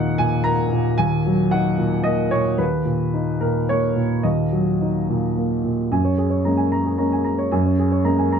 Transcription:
Already playing: D#2 A#2 D#4 F#5
0.18 A#2 G#5
0.44 A#3 A#5
0.72 A#2
0.98 D#2 G#5
1.26 F#3
1.51 D#4 F#5
1.79 A#2
2.04 A#3 D#5
2.31 A#2 C#5
2.58 D#2 B4
2.85 A#2
3.14 D#4
3.41 A#2 A#4
3.69 A#3 C#5
3.96 A#2
4.23 D#2 D#5
4.53 F#3
4.81 D#4
5.09 A#2
5.37 A#3
5.64 A#2
5.91 F#2 G#5
6.05 C#5
6.18 G#4
6.30 C#5
6.45 G#3 A#3 C#4 A#5
6.57 G#5
6.72 A#5
6.86 G#4
6.98 G#3 A#3 C#4 A#5
7.12 G#5
7.24 A#5
7.38 C#5
7.52 F#2 G#5
7.66 C#5
7.79 G#4
7.92 C#5
8.04 G#3 A#3 C#4 A#5
8.18 G#5
8.32 A#5

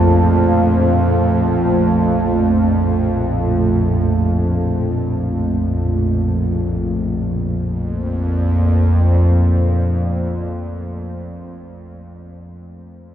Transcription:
Already playing: A#1 F2 A3 F4 A4 C5 F5 A5
6.79 A#1 F2 A#3
6.99 F4
7.17 C5
7.36 D5

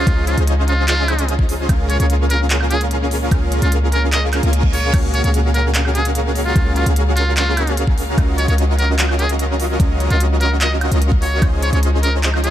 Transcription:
Already playing: F3 D#4 F4
0.07 C#2 C#4 F4 G#4 D#5, kick, closed hi-hat
0.27 F4, closed hi-hat
0.37 C#2 C#4 F4 G#4 C5 D#5, closed hi-hat
0.47 closed hi-hat
0.68 F4, closed hi-hat
0.88 F4, clap, closed hi-hat
1.08 closed hi-hat, high woodblock
1.19 closed hi-hat
1.29 closed hi-hat
1.39 kick
1.49 open hi-hat
1.69 C#2 A#2 G#3 C#4 F4 G#4 A#4 F5, kick, closed hi-hat, high woodblock
1.89 C#5, closed hi-hat
2.00 C#2 C#4 F4 G#4 A#4 C#5 F5, closed hi-hat
2.10 closed hi-hat
2.30 A#4, closed hi-hat
2.50 clap, closed hi-hat
2.61 high woodblock
2.70 G#4, closed hi-hat
2.81 closed hi-hat
2.91 closed hi-hat
3.11 open hi-hat
3.31 C#2 C#4 F4 G#4 A#4 F5, kick, closed hi-hat, high woodblock
3.52 closed hi-hat
3.62 C#2 C#4 F4 G#4 A#4 F5, closed hi-hat
3.72 closed hi-hat
3.92 A#4, closed hi-hat
4.12 D#5, clap, closed hi-hat, reverse cymbal
4.33 clap, closed hi-hat, high woodblock
4.43 C#2 C#4 F4 G#4 A#4 F5, closed hi-hat
4.53 closed hi-hat
4.63 kick
4.73 C#5, open hi-hat
4.94 C#2 C#4 F#4 A#4 F5, kick, closed hi-hat, crash, high woodblock
5.14 C#5, closed hi-hat
5.24 C#2 C#4 F#4 G#4 A#4 C#5 F5, closed hi-hat
5.34 closed hi-hat
5.54 A#4, closed hi-hat
5.75 clap, closed hi-hat
5.85 high woodblock
5.95 G#4, closed hi-hat
6.05 closed hi-hat
6.15 closed hi-hat
6.36 open hi-hat
6.45 F4
6.56 C#2 C#4, kick, closed hi-hat
6.76 F4, closed hi-hat
6.86 C#2 C#4 F#4 G#4 A#4 F5, closed hi-hat
6.96 closed hi-hat
7.16 F4, closed hi-hat
7.36 F4, clap, closed hi-hat
7.57 closed hi-hat, high woodblock
7.67 closed hi-hat
7.77 closed hi-hat
7.87 kick
7.98 open hi-hat
8.18 C#2 C#3 F#3 C#4 F4 D#5, kick, closed hi-hat, high woodblock
8.38 C#5, closed hi-hat
8.48 C#2 C#4 F4 F#4 A#4 C#5 D#5, closed hi-hat
8.58 closed hi-hat
8.79 A#4, closed hi-hat
8.99 clap, closed hi-hat
9.09 high woodblock
9.19 G#4, closed hi-hat
9.29 closed hi-hat
9.39 closed hi-hat
9.60 open hi-hat
9.80 C#2 C#4 F4 F#4, kick, closed hi-hat
10.00 closed hi-hat
10.10 C#2 C#4 F4 F#4 A#4 D#5, closed hi-hat
10.20 closed hi-hat
10.41 A#4, closed hi-hat
10.61 D#5, clap, closed hi-hat
10.81 closed hi-hat, high woodblock
10.91 C#2 C#4 F4 F#4 A#4 D#5, closed hi-hat
11.02 closed hi-hat
11.12 kick
11.22 C#5, open hi-hat
11.42 C#2 F3 C#4 D#4 F4 G#4 C5 D#5, kick, closed hi-hat, high woodblock
11.62 C#5, closed hi-hat
11.73 C#2 C#4 F4 G#4 C5 C#5 D#5, closed hi-hat
11.83 closed hi-hat
12.03 A#4, closed hi-hat
12.23 clap, closed hi-hat
12.34 high woodblock
12.44 G#4, closed hi-hat

